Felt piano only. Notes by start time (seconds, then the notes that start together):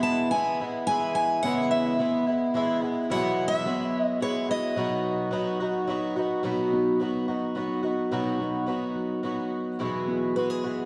Already playing: B3
0.33 B3
0.89 G#4
1.44 B3
1.99 B3
2.55 G#4
3.10 F#3
3.66 B3
4.21 G#4
4.77 F#3
5.33 F#3
5.88 D#4
6.44 F#3
6.72 F#3 B3 D#4
7.28 F#3
7.56 F#3 B3 D#4
8.12 F#3
8.40 F#3 B3 D#4
8.95 F#3
9.24 F#3 B3 D#4
9.79 F#3
10.08 B3 E4 G#4